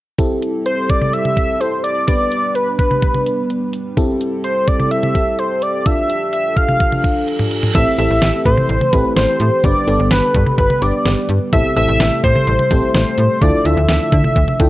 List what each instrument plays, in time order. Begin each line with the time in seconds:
0.19 fm electric piano C4 E4 G4 A4, kick, closed hi-hat
0.43 closed hi-hat
0.66 analog synth lead C5, closed hi-hat
0.90 analog synth lead D5, kick, closed hi-hat
1.02 mid tom
1.13 analog synth lead E5, closed hi-hat
1.25 mid tom
1.37 kick, closed hi-hat
1.60 fm electric piano C4 E4 G4 A4, analog synth lead C5, closed hi-hat
1.84 analog synth lead D5, closed hi-hat
2.07 analog synth pad G3 B3 D4 B4, fm electric piano B3 D4 G4 B4, analog synth lead D5, kick, closed hi-hat
2.32 closed hi-hat
2.55 analog synth lead B4, closed hi-hat
2.78 analog synth lead B4, kick, closed hi-hat
2.91 mid tom
3.02 kick, closed hi-hat
3.14 mid tom
3.26 closed hi-hat
3.50 closed hi-hat
3.73 closed hi-hat
3.97 fm electric piano C4 E4 G4 A4, analog synth pad C4 G4 A4, kick, closed hi-hat
4.21 closed hi-hat
4.44 analog synth lead C5, closed hi-hat
4.68 analog synth lead D5, kick, closed hi-hat
4.80 mid tom
4.91 analog synth lead E5, closed hi-hat
5.03 mid tom
5.15 fm electric piano C4 E4 G4 A4, kick, closed hi-hat
5.39 analog synth lead C5, closed hi-hat
5.62 analog synth lead D5, closed hi-hat
5.86 analog synth pad F3 D4, fm electric piano D4 F4 A4, analog synth lead E5, kick, closed hi-hat
6.10 closed hi-hat
6.33 analog synth lead E5, closed hi-hat
6.57 analog synth lead F5, kick, closed hi-hat
6.69 mid tom
6.80 kick, closed hi-hat, reverse cymbal
6.92 mid tom
7.04 kick, closed hi-hat
7.28 closed hi-hat
7.39 mid tom
7.51 closed hi-hat
7.63 mid tom
7.75 fm bass A1, analog synth pad E3 A3 C4, fm electric piano C4 E4 G4 A4, analog synth lead E5, kick, closed hi-hat, crash
7.98 fm bass A1, fm electric piano C4 E4 G4 A4, analog synth lead E5, closed hi-hat
8.10 fm bass A1
8.22 fm bass A1, snare, closed hi-hat
8.46 fm bass A2, analog synth lead C5, kick, closed hi-hat
8.58 mid tom
8.69 fm bass A1, closed hi-hat
8.81 mid tom
8.93 fm bass A1, fm electric piano C4 E4 G4 A4, analog synth lead B4, kick, closed hi-hat
9.16 fm bass A1, analog synth lead C5, snare, closed hi-hat
9.40 fm bass A2, closed hi-hat
9.64 fm bass G1, analog synth pad D3 G3 B3, fm electric piano B3 D4 G4 B4, analog synth lead D5, kick, closed hi-hat
9.87 fm bass G1, fm electric piano B3 D4 G4 A4, closed hi-hat
9.99 fm bass G1
10.11 fm bass G1, analog synth lead B4, snare, closed hi-hat
10.35 fm bass G2, kick, closed hi-hat
10.47 mid tom
10.58 fm bass G1, analog synth lead B4, kick, closed hi-hat
10.70 mid tom
10.82 fm bass G1, fm electric piano B3 D4 G4 B4, analog synth lead D5, closed hi-hat
11.05 fm bass G1, snare, closed hi-hat
11.29 fm bass G2, closed hi-hat
11.53 fm bass A1, analog synth pad C3 A3 E5, fm electric piano C4 E4 G4 A4, analog synth lead E5, kick, closed hi-hat
11.76 fm bass A1, fm electric piano C4 E4 G4 A4, analog synth lead E5, closed hi-hat
11.88 fm bass A1
12.00 fm bass A1, snare, closed hi-hat
12.24 fm bass A2, analog synth lead C5, kick, closed hi-hat
12.35 mid tom
12.47 fm bass A1, closed hi-hat
12.59 mid tom
12.71 fm bass A1, fm electric piano C4 E4 G4 A4, kick, closed hi-hat
12.94 fm bass A1, analog synth lead C5, snare, closed hi-hat
13.18 fm bass A2, closed hi-hat
13.42 fm bass D2, analog synth pad D3 F3, fm electric piano D4 E4 F4 A4, analog synth lead D5, kick, closed hi-hat
13.65 fm bass D2, fm electric piano D4 E4 F4 A4, analog synth lead E5, closed hi-hat
13.77 fm bass D2
13.89 fm bass D2, analog synth lead E5, snare, closed hi-hat
14.12 fm bass D3, kick, closed hi-hat
14.24 mid tom
14.36 fm bass D2, kick, closed hi-hat
14.48 mid tom
14.60 fm bass D2, fm electric piano D4 E4 F4 A4 G5, kick, closed hi-hat